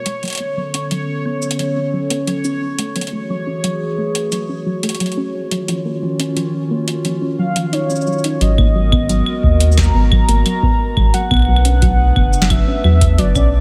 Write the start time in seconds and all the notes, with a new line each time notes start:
Already playing: B2 G#3 F#4 A#4 C#5
0.06 G#3, closed hi-hat
0.23 D3 F#3 B3 C#4 A4, closed hi-hat
0.25 closed hi-hat
0.28 closed hi-hat
0.30 closed hi-hat
0.33 closed hi-hat
0.35 closed hi-hat
0.38 B3, closed hi-hat
0.57 F#3
0.74 C#4, closed hi-hat
0.91 F#3, closed hi-hat
1.25 B3
1.42 cabasa
1.51 closed hi-hat
1.59 F#3, closed hi-hat
1.76 C#4
1.93 F#3
2.10 B3, closed hi-hat
2.27 F#3, closed hi-hat
2.44 C#4, cabasa
2.79 A3, closed hi-hat
2.96 E3 F#3 A3 F#4 G#4, closed hi-hat
3.01 closed hi-hat
3.07 closed hi-hat
3.13 A3
3.30 F#3
3.47 C#4
3.64 F#3, closed hi-hat
3.98 A3
4.15 closed hi-hat
4.32 F#3, closed hi-hat, cabasa
4.49 C#4
4.66 F#3
4.83 A3, closed hi-hat
4.89 closed hi-hat
4.95 closed hi-hat
5.00 F#3, closed hi-hat
5.06 closed hi-hat
5.12 closed hi-hat
5.17 C#4
5.34 D#3 C#4 F4
5.51 F#3, closed hi-hat
5.68 F3, closed hi-hat
5.85 A#3
6.03 F3
6.20 C#4, closed hi-hat
6.37 F3, closed hi-hat
6.71 A#3
6.88 closed hi-hat
7.05 F3, closed hi-hat
7.22 C#4
7.39 F#3 F5
7.56 F3, closed hi-hat
7.73 D#4 C#5, closed hi-hat
7.90 C#4, cabasa
7.96 cabasa
8.01 cabasa
8.07 F#3, cabasa
8.13 cabasa
8.18 cabasa
8.24 D#4, closed hi-hat
8.41 G#1 F#3 G#3 B3 F#4 A#4 D#5, closed hi-hat
8.58 A#3, kick, claves
8.75 F#3
8.92 B3, kick, claves
9.09 F#3, closed hi-hat
9.26 claves
9.43 D#2 A#3, kick
9.60 closed hi-hat, cabasa
9.72 cabasa
9.78 F#3 A#5, kick, snare, closed hi-hat, claves
9.83 cabasa
9.95 G#1 B3
10.12 F#3, kick, claves
10.29 G#1 A#3, closed hi-hat
10.46 F#3, closed hi-hat, claves
10.63 B3, kick
10.97 G#1 G#3, kick, claves
11.14 F#3 A3 B3 D4 B4 F#5, closed hi-hat
11.31 B1 B3, kick, claves
11.34 claves
11.39 claves
11.42 claves
11.45 F#3, claves
11.56 claves
11.65 C#4, closed hi-hat
11.82 F#3, kick, closed hi-hat
12.16 F#1 B3, kick, claves
12.33 cabasa
12.42 snare
12.50 F#3 E5, kick, closed hi-hat, claves
12.67 C#4
12.84 E2 F#3 E5, claves
13.01 B3, kick, closed hi-hat
13.18 F#1 F#3 D5, closed hi-hat
13.35 B1 C#4, kick, cabasa, claves